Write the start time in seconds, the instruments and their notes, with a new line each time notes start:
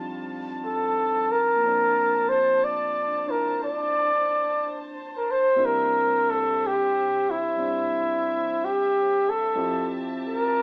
Already playing: grand piano F2 F3 G3 C4 D4 D#4, string section G3 F4 A5
0.66 flugelhorn A4
1.32 flugelhorn A#4
1.56 grand piano A#2 F3
1.61 grand piano A#3 C4, string section D4 C5
1.68 grand piano D4
2.29 flugelhorn C5
2.64 flugelhorn D5
3.26 grand piano D4 E4, flugelhorn A#4
3.64 flugelhorn D5
5.17 flugelhorn A#4
5.31 flugelhorn C5
5.56 grand piano C3 G3 A#3 D4 E4, string section E5
5.65 flugelhorn A#4
6.30 flugelhorn A4
6.67 flugelhorn G4
7.31 flugelhorn E4
7.56 grand piano G3 C4 D4
8.64 flugelhorn G4
9.30 flugelhorn A4
9.53 grand piano F2 F3 C4 E4, string section F3 G4 A5
9.57 grand piano G4
10.28 flugelhorn A#4